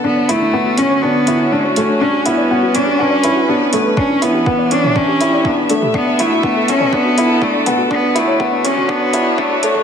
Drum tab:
HH |--x---x---x---x-|--x---x---x---x-|--x---x---x---x-|--x---x---x---x-|
T2 |----------------|----------------|-------o-------o|-------o------o-|
BD |----------------|----------------|o---o---o---o---|o---o---o---o---|

HH |--x---x---x---x-|
T2 |-------o-------o|
BD |o---o---o---o---|